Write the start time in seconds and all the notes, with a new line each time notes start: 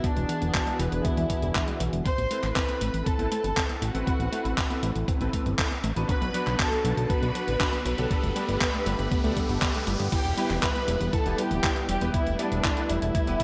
Already playing: B3 F#4
0.04 E3 B3 D4 G#4, kick, closed hi-hat
0.16 E1 G#3, closed hi-hat
0.29 E3, closed hi-hat
0.42 E1 D3, closed hi-hat
0.54 B3, kick, clap, closed hi-hat
0.67 G#3, closed hi-hat
0.79 E1 E3 B4, closed hi-hat
0.92 E1 D3, closed hi-hat
1.05 B3 E4, kick, closed hi-hat
1.17 E2 G#3, closed hi-hat
1.30 E3, kick, closed hi-hat
1.42 E1 D3, closed hi-hat
1.55 B3, kick, clap, closed hi-hat
1.68 G#3, closed hi-hat
1.80 B1 E3, closed hi-hat
1.93 E1 D3, closed hi-hat
2.05 C4 A4 C5 C6, kick, closed hi-hat, riser
2.18 A1 B3, closed hi-hat
2.31 A3 C4 E4 A4 B4, closed hi-hat
2.43 A1 E3, clap, closed hi-hat
2.56 C4 B4 B5, kick, clap, closed hi-hat
2.69 B3 C4 E4 A4 B4, closed hi-hat
2.81 A1 A3, closed hi-hat
2.94 A1 E3, closed hi-hat
3.06 C4 A4 A5, kick, closed hi-hat
3.19 A1 B3 C4 E4 A4 B4, closed hi-hat
3.32 A3, closed hi-hat
3.44 G1 E3, closed hi-hat
3.57 C4 E4 A4 B4, kick, clap, closed hi-hat
3.69 B3, closed hi-hat
3.82 A1 A3 F#4 F#5, closed hi-hat
3.94 A1 E3 C4 E4 A4 B4, closed hi-hat
4.07 C4, kick, closed hi-hat
4.20 A1 B3, closed hi-hat
4.32 A3 C4 E4 A4 B4, closed hi-hat
4.45 A1 E3, closed hi-hat
4.58 C4, kick, clap, closed hi-hat
4.70 B3 C4 E4 A4 B4, closed hi-hat
4.83 A1 A3, closed hi-hat
4.95 A1 E3, closed hi-hat
5.08 C4, kick, closed hi-hat
5.21 A1 B3 C4 E4 A4 B4, closed hi-hat
5.33 A3, kick, closed hi-hat
5.46 G1 E3, closed hi-hat
5.58 C4 E4 A4 B4, kick, clap, closed hi-hat
5.71 B3, closed hi-hat
5.84 A1 A3, closed hi-hat
5.96 A1 E3 B3 D4 F#4 B4, closed hi-hat
6.09 B3 D4 F#4 B4 B5, kick, closed hi-hat
6.21 B1 B3, closed hi-hat
6.34 F#3 B3 D4 F#4 B4, closed hi-hat
6.47 B1 D3, clap, closed hi-hat
6.59 D4 A4 A5, kick, clap, closed hi-hat
6.72 B3 D4 F#4 B4, closed hi-hat
6.84 B1 F#3, closed hi-hat
6.97 B1 D3, closed hi-hat
7.10 D4 B4 B5, kick, closed hi-hat
7.22 B1 B3 D4 F#4 B4, closed hi-hat
7.35 F#3, closed hi-hat
7.47 A1 D3, closed hi-hat
7.60 B3 D4 F#4 B4, kick, clap, closed hi-hat
7.73 B3, closed hi-hat
7.85 B1 F#3 B4 B5, closed hi-hat
7.98 B1 D3 B3 D4 G4 A4, closed hi-hat
8.10 A3 B3 G4 B4 B5, kick, closed hi-hat
8.23 G1 A3, closed hi-hat
8.36 G3 B3 D4 G4 A4, closed hi-hat
8.48 G1 D3, closed hi-hat
8.61 B3, kick, clap, closed hi-hat
8.74 A3 B3 D4 G4 A4, closed hi-hat
8.86 G1 G3, closed hi-hat
8.99 G1 D3, closed hi-hat
9.11 B3, kick, closed hi-hat
9.24 D2 A3 B3 D4 G4 A4, closed hi-hat
9.37 G3, kick, closed hi-hat
9.49 G1 D3 B3 D4 G4 A4, closed hi-hat
9.62 B3, kick, clap, closed hi-hat
9.74 A3 B3 D4 G4 A4, closed hi-hat
9.87 G1 G3 B3 E4 G4 B4, closed hi-hat
10.00 G2 D3, closed hi-hat
10.12 G3 B3 E4 G4 G5, kick, closed hi-hat, crash, downlifter
10.25 E1 B3, closed hi-hat
10.37 G3 B3 E4 G4 B4, closed hi-hat
10.50 E1 E3, clap, closed hi-hat
10.63 E4 B4 B5, kick, clap, closed hi-hat
10.75 B3 E4 G4 B4, closed hi-hat
10.88 E1 G3, closed hi-hat
11.00 E1 E3, closed hi-hat
11.13 E4 A4 A5, kick, closed hi-hat
11.26 E1 B3 E4 G4 B4, closed hi-hat
11.38 G3 G4 G5, closed hi-hat
11.51 D1 E3, closed hi-hat
11.63 B3 E4 G4 B4, kick, clap, closed hi-hat
11.76 B3, closed hi-hat
11.89 E1 G3 G4 G5, closed hi-hat
12.01 E1 E3 B3 E4 G4 B4, closed hi-hat
12.14 A3 E4 E5, kick, closed hi-hat
12.26 E1 B3, closed hi-hat
12.39 G3 B3 D4 E4 G4 B4 D5, closed hi-hat
12.52 E1 E3, closed hi-hat
12.64 E4, kick, clap, closed hi-hat
12.77 B3 E4 G4 B4, closed hi-hat
12.89 E1 G3 E4 E5, closed hi-hat
13.02 E1 E3, closed hi-hat
13.15 E4, kick, closed hi-hat
13.27 E1 B3 E4 G4 B4, closed hi-hat
13.40 G3, kick, closed hi-hat